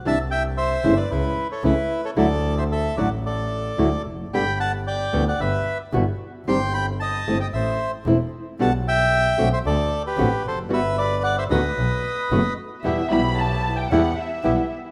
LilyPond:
<<
  \new Staff \with { instrumentName = "Violin section" } { \time 4/4 \key g \major \tempo 4 = 113 r1 | r1 | r1 | r1 |
r1 | r1 | \key e \minor e''8 b''8 a''8. g''16 fis''8 e''4 r8 | }
  \new Staff \with { instrumentName = "Bandoneon" } { \time 4/4 \key g \major <e'' a''>8 <e'' g''>8 <c'' e''>8. <b' d''>16 <e' b'>8. <a' cis''>16 <e' b'>8. <a' cis''>16 | <a' d''>8. <c'' e''>16 <a' e''>8 <d'' fis''>8 <a' d''>4. r8 | <g'' b''>8 <fis'' a''>8 <d'' g''>8. <d'' fis''>16 <b' e''>8. r4 r16 | <g'' c'''>8 <g'' b''>8 <ees'' a''>8. <ees'' g''>16 <c'' e''>8. r4 r16 |
<fis'' a''>8 <e'' g''>4~ <e'' g''>16 <c'' e''>16 <a' d''>8. <g' b'>8. <a' c''>8 | <b' e''>8 <b' d''>8 <d'' fis''>16 <c'' e''>16 <b' ees''>2 r8 | \key e \minor r1 | }
  \new Staff \with { instrumentName = "Bandoneon" } { \time 4/4 \key g \major r1 | r1 | r1 | r1 |
r1 | r1 | \key e \minor <b e' g'>8 <b e' g'>4. <b e' g'>8 r8 <b e' g'>8 r8 | }
  \new Staff \with { instrumentName = "Nylon-string guitar" } { \time 4/4 \key g \major <c e g d' e'>8 r4 <cis e a cis' e'>8 r4 <cis e a cis' e'>8 r8 | <d fis a e' fis'>8 r4 <d fis a e' fis'>8 r4 <d fis a e' fis'>8 r8 | <b, d g b g'>8 r4 <b, e g b fis'>8 r4 <b, e g b fis'>8 r8 | <ees g c' d' g'>8 r4 <e a c' e'>8 r4 <e a c' e'>8 r8 |
<b, d g b fis'>8 r4 <d a c' fis'>8 r4 <d a c' fis'>8 r8 | <g b fis'>8 r4 <b, ees a b fis'>8 r4 <b, dis a b fis'>8 r8 | \key e \minor <b, e g b e'>8 <b, e g b e'>8 r4 <b, e g b e'>8 r8 <b, e g b e'>8 r8 | }
  \new Staff \with { instrumentName = "Double bass" } { \clef bass \time 4/4 \key g \major c,4. g,,8 cis,8 r8 cis,8 r8 | d,4. a,,4. d,8 f,,8 | g,,4. d,8 g,,8 r8 g,,8 r8 | g,,4. g,,8 a,,8 r8 e,,8 r8 |
b,,4. b,,8 d,8 r8 a,,8 f,,8 | g,,4. d,8 b,,8 r8 fis,,8 r8 | \key e \minor e,8 b,,4. e,8 r8 b,,8 r8 | }
>>